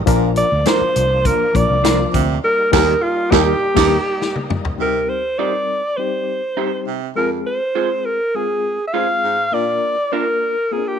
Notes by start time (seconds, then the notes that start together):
Already playing: A#3
0.06 A#1 A#2 F3 A#3 D4 F4 A#4, kick, closed hi-hat
0.36 D5 D6, closed hi-hat
0.52 D2
0.65 F3 A#3 D4 F4 A#4 C5 C6, snare, closed hi-hat
0.81 muted fingered electric bass stroke
0.96 C2, closed hi-hat
1.25 F3 A#3 D4 F4 A#4 A#5, kick, closed hi-hat
1.54 A#1 F3 A#3 D4 F4 A#4 D5 D6, kick, closed hi-hat
1.70 C2
1.83 F3 A#3 D4 F4 A#4 C5, snare, closed hi-hat
2.14 D2 C3, kick, closed hi-hat
2.44 G3 A#3 D#4 A#4
2.72 D#2 G3 A#3 D#4 G4 A#4, kick, snare, crash
3.03 F4
3.31 D#2 G3 A#3 D#4 G4 A#4, kick, snare
3.75 D#2 G2 G3 A#3 D#4 G4 A#4, kick, snare, crash
4.22 snare
4.36 high tom
4.50 mid tom
4.65 floor tom
4.78 C3 G3 C4 D#4 F#4 A#4
4.86 G4
5.09 C5
5.39 G3 C4 D#4 G4 A#4 C5 D5
5.97 G3 C4 D#4 G4 C5
6.57 G3 C4 D#4 G4 C5
6.87 C3
7.16 F2 G#3 C4 F4 G#4 A#4
7.47 C5
7.75 G#3 C4 F4 G#4 C5
8.05 A#4
8.35 G#3 C4 F4 G#4
8.88 E5
8.93 G#3 C4 F4 G#4 C5 F5
9.23 G#2
9.52 A#2 A#3 D4 F4 A#4 D5
10.12 A#3 D4 F4 A#4
10.72 A#3 C4 F4 G#4 A#4
10.79 D4
10.87 G4